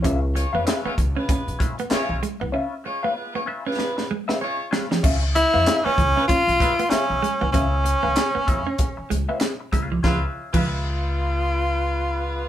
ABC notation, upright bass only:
X:1
M:4/4
L:1/16
Q:"Swing 16ths" 1/4=96
K:Dbmix
V:1 name="Upright bass" clef=bass
D,,3 F,, z2 D,, z2 C,,2 z2 C,, z =C,, | z16 | D,,3 F,, z2 D,, z2 C,,2 z2 C,, z =C,, | D,,3 D,, z2 F,, z3 D,, z3 D,, =C,, |
D,, z2 D,,12- D,, |]